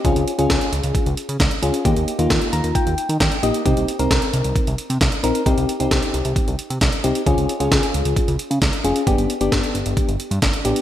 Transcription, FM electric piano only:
\new Staff \with { instrumentName = "FM electric piano" } { \time 4/4 \key c \phrygian \tempo 4 = 133 << { r1 | r4. bes''8 g''4 g''8 ees''8 | r1 | r1 |
r1 | r1 | } \\ { <des' f' aes'>8 r16 <des' f' aes'>4. r4 r16 <des' f' aes'>8 | <bes ees' g'>8 r16 <bes ees' f'>4. r4 r16 <bes ees' g'>8 | <c' ees' g'>8 r16 <c' ees' bes'>4. r4 r16 <c' ees' bes'>8 | <c' ees' g'>8 r16 <c' ees' g'>4. r4 r16 <c' ees' g'>8 |
<des' f' aes'>8 r16 <des' f' aes'>4. r4 r16 <des' f' aes'>8 | <b d' g'>8 r16 <b d' g'>4. r4 r16 <b d' g'>8 | } >> }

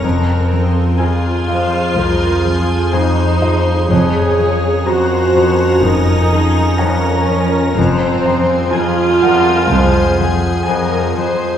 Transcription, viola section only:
\new Staff \with { instrumentName = "Viola section" } { \time 4/4 \key f \phrygian \tempo 4 = 62 c'4 f'2 ees'4 | aes'4 ges'4 ees'4 des'4 | c'4 f'2 r4 | }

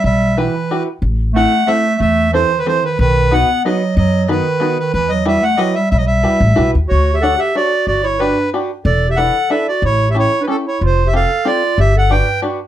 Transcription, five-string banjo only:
\new Staff \with { instrumentName = "Five-string banjo" } { \time 3/4 \key e \minor \tempo 4 = 185 r4 <e' fis' g' b'>8 r8 <e' fis' g' b'>8 r8 | r4 <c' e' a' c''>8 r8 <c' e' a' c''>8 r8 | r4 <c' e' a' c''>8 r8 <c' e' a' c''>8 r8 | r4 <b dis' fis' b'>8 r8 <b dis' fis' b'>8 r8 |
r4 <b dis' fis' b'>8 r8 <b dis' fis' b'>8 r8 | r4 <e' fis' g' b'>8 r8 <e' fis' g' b'>8 r8 | r4 <e' fis' g' b'>8 r8 <e' fis' g' b'>8 r8 | \key d \major r4 <d' fis' a' cis''>8 r8 <d' fis' a' cis''>8 r8 |
r4 <d' fis' g' b'>8 r8 <d' fis' g' b'>8 r8 | r4 <d' e' a' b'>8 r8 <d' e' a' b'>8 r8 | r4 <cis' e' g' a'>8 r8 <cis' e' g' a'>8 r8 | r4 <c' f' g' a'>8 r8 <c' f' g' a'>8 r8 |
r4 <d' fis' g' b'>8 r8 <d' fis' g' b'>8 r8 | }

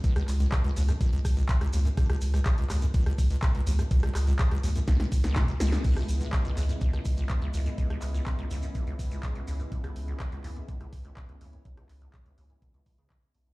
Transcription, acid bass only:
\new Staff \with { instrumentName = "Acid bass" } { \clef bass \time 4/4 \key cis \minor \tempo 4 = 124 cis,16 cis,16 r16 cis,16 r16 cis,16 dis,16 fis,16 cis,16 cis,16 r16 cis,16 r16 cis,16 dis,16 fis,16 | cis,16 cis,16 r16 cis,16 r16 cis,16 dis,16 fis,16 cis,16 cis,16 r16 cis,16 r16 cis,16 dis,16 fis,16 | cis,16 cis,16 r16 cis,16 r16 cis,16 dis,16 fis,16 cis,16 cis,16 r16 cis,16 cis16 cis,16 cis,16 e,16 | cis,16 cis,16 r16 cis,16 r16 cis,16 dis,16 fis,16 cis,16 cis,16 r16 cis,16 r16 cis,16 dis,16 fis,16 |
cis,16 cis,16 r16 cis,16 r16 cis,16 dis,16 fis,16 cis,16 cis,16 r16 cis,16 r16 cis,16 dis,16 fis,16 | cis,16 cis,16 r16 cis,16 r16 cis,16 dis,16 fis,16 cis,16 cis,16 r16 cis,16 r16 cis,16 dis,16 fis,16 | cis,16 cis,16 r16 cis,16 r16 cis,16 dis,16 fis,16 cis,16 cis,16 cis,16 cis16 cis,16 r16 e,16 cis,16 | }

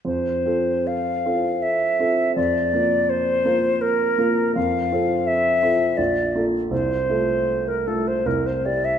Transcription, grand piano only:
\new Staff \with { instrumentName = "Grand piano" } { \time 3/4 \key f \major \tempo 4 = 81 f,8 <c' f' a'>4 <c' f' a'>4 <c' f' a'>8 | f,8 <bes f' bes'>4 <bes f' bes'>4 <bes f' bes'>8 | f,8 <c' f' a'>4 <c' f' a'>8 bes,,8 <bes f' a'>8 | c,8 <a f' a'>4 <a f' a'>8 c,8 <c' e' g'>8 | }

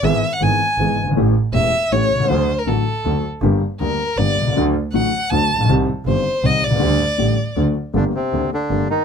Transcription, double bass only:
\new Staff \with { instrumentName = "Double bass" } { \clef bass \time 3/4 \key g \minor \tempo 4 = 159 gis,,8 r8 gis,,8 r8 gis,,8 g,,8 | a,,8 r8 e,,8 r8 a,,8 c,8 | d,8 r8 a,,8 r8 d,8 r8 | g,,8 r8 d,8 r8 g,,8 c,8 |
d,8 r8 a,,8 r8 d,8 bes,,8 | c,8 r8 g,,8 r8 c,8 c,8 | d,8 r8 a,,8 r8 d,8 r8 | g,,8 r8 d,8 r8 g,,8 r8 | }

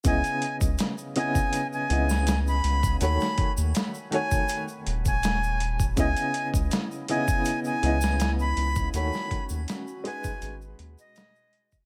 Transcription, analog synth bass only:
\new Staff \with { instrumentName = "Analog synth bass" } { \clef bass \time 4/4 \key cis \minor \tempo 4 = 81 cis,16 r8 cis,16 r4. cis,4 cis,8 | dis,16 r8 dis,16 r4. dis,,4. | cis,16 r8 cis,16 r4. cis,4 cis,8 | dis,16 r8 dis,16 r4 gis,,8 dis,16 r4 r16 | }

